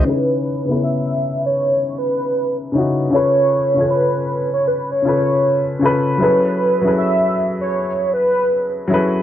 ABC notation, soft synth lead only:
X:1
M:4/4
L:1/16
Q:"Swing 16ths" 1/4=78
K:C#m
V:1 name="Soft synth lead"
B4 e3 c3 B3 z3 | c4 B3 c B c c3 z3 | B4 e3 c3 B3 z3 |]